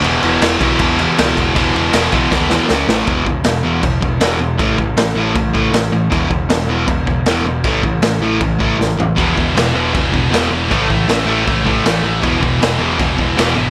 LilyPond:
<<
  \new Staff \with { instrumentName = "Distorted electric guitar" } { \clef bass \time 4/4 \key a \lydian \tempo 4 = 157 <e, b, e>8 <e, b, e>8 <e, b, e>8 <e, b, e>8 <e, b, e>8 <e, b, e>8 <e, b, e>8 <e, b, e>8 | <e, b, e>8 <e, b, e>8 <e, b, e>8 <e, b, e>8 <e, b, e>8 <e, b, e>8 <cis gis cis'>8 <a, e a>8 | <e, b, e>8 <e, b,>8 <e, b,>8 <e, b, e>8 <e, b,>8 <e, b,>8 <e, b, e>8 <e, b,>8 | <a, e a>8 <a, e>8 <a, e>8 <a, e a>8 <a, e>8 <a, e a>8 <a, e>8 <a, e>8 |
<e, b, e>8 <e, b,>8 <e, b,>8 <e, b, e>8 <e, b,>8 <e, b,>8 <e, b, e>8 <e, b,>8 | <a, e a>8 <a, e>8 <a, e>8 <a, e a>8 <a, e>8 <a, e a>8 <a, e>8 <a, e>8 | <e, b, e>8 <e, b,>8 <e, b,>8 <e, b, e>8 <e, b,>8 <e, b,>8 <e, b, e>8 <e, b,>8 | <a, e a>8 <a, e>8 <a, e>8 <a, e a>8 <a, e>8 <a, e a>8 <a, e>8 <a, e>8 |
<e, b, e>8 <e, b,>8 <e, b,>8 <e, b, e>8 <e, b,>8 <e, b,>8 <e, b, e>8 <e, b,>8 | }
  \new Staff \with { instrumentName = "Distorted electric guitar" } { \clef bass \time 4/4 \key a \lydian <e, b, e>4. <e, b, e>2~ <e, b, e>8 | <e, b, e>4. <e, b, e>4. r4 | r1 | r1 |
r1 | r1 | <e, b, e>8 <e, b, e>8 <e, b, e>8 <e, b, e>8 <e, b, e>8 <e, b, e>8 <e, b, e>8 <e, b, e>8 | <a, e a>8 <a, e a>8 <a, e a>8 <a, e a>8 <a, e a>8 <a, e a>8 <a, e a>8 <a, e a>8 |
<e, b, e>8 <e, b, e>8 <e, b, e>8 <e, b, e>8 <e, b, e>8 <e, b, e>8 <e, b, e>8 <e, b, e>8 | }
  \new Staff \with { instrumentName = "Overdriven electric guitar" } { \clef bass \time 4/4 \key a \lydian <e, b, e>8 <e, b, e>8 <e, b, e>8 <e, b, e>8 <e, b, e>8 <e, b, e>8 <e, b, e>8 <e, b, e>8 | <e, b, e>8 <e, b, e>8 <e, b, e>8 <e, b, e>8 <e, b, e>8 <e, b, e>8 <cis gis cis'>8 <a, e a>8 | <e, b, e>8 <e, b,>8 <e, b,>8 <e, b, e>8 <e, b,>8 <e, b,>8 <e, b, e>8 <e, b,>8 | <a, e a>8 <a, e>8 <a, e>8 <a, e a>8 <a, e>8 <a, e a>8 <a, e>8 <a, e>8 |
<e, b, e>8 <e, b,>8 <e, b,>8 <e, b, e>8 <e, b,>8 <e, b,>8 <e, b, e>8 <e, b,>8 | <a, e a>8 <a, e>8 <a, e>8 <a, e a>8 <a, e>8 <a, e a>8 <a, e>8 <a, e>8 | <e, b, e>8 <e, b,>8 <e, b,>8 <e, b, e>8 <e, b,>8 <e, b,>8 <e, b, e>8 <e, b,>8 | <a, e a>8 <a, e>8 <a, e>8 <a, e a>8 <a, e>8 <a, e a>8 <a, e>8 <a, e>8 |
<e, b, e>8 <e, b,>8 <e, b,>8 <e, b, e>8 <e, b,>8 <e, b,>8 <e, b, e>8 <e, b,>8 | }
  \new Staff \with { instrumentName = "Picked electric bass" } { \clef bass \time 4/4 \key a \lydian e,,8 e,,8 e,,8 b,,8 e,,4 cis,8 e,,8 | e,,8 e,,8 e,,8 b,,8 dis,4 cis,8 a,,8 | e,,8 e,,8 e,,8 e,,8 e,,4 e,,8 e,,8 | a,,8 a,,8 a,,8 a,,8 a,,4 a,,8 a,,8 |
e,,8 e,,8 e,,8 e,,8 e,,4 e,,8 e,,8 | a,,8 a,,8 a,,8 a,,8 a,,4 a,,8 a,,8 | e,,8 e,,8 e,,8 e,,8 e,,4 e,,8 e,,8 | a,,8 a,,8 a,,8 a,,8 a,,4 a,,8 a,,8 |
e,,8 e,,8 e,,8 e,,8 e,,4 e,,8 gis,,8 | }
  \new DrumStaff \with { instrumentName = "Drums" } \drummode { \time 4/4 cymc8 cymc8 <cymc sn>8 <cymc bd>8 <cymc bd>8 cymc8 <cymc sn>8 <cymc bd>8 | <cymc bd>8 cymc8 <cymc sn>8 <cymc bd>8 <bd sn>8 sn8 sn8 sn8 | <cymc bd>8 bd8 <cymc sn>4 <cymc bd>8 bd8 <cymc sn>4 | <cymc bd>8 bd8 <cymc sn>4 <cymc bd>8 bd8 <cymc sn>4 |
<cymc bd>8 bd8 <cymc sn>4 <cymc bd>8 bd8 <cymc sn>4 | <cymc bd>8 bd8 <cymc sn>4 <cymc bd>8 bd8 sn8 tomfh8 | <cymc bd>8 bd8 <cymc sn>4 <cymc bd>8 bd8 <cymc sn>4 | <cymc bd>8 bd8 <cymc sn>4 <cymc bd>8 bd8 <cymc sn>4 |
<cymc bd>8 bd8 <cymc sn>4 <cymc bd>8 bd8 <cymc sn>4 | }
>>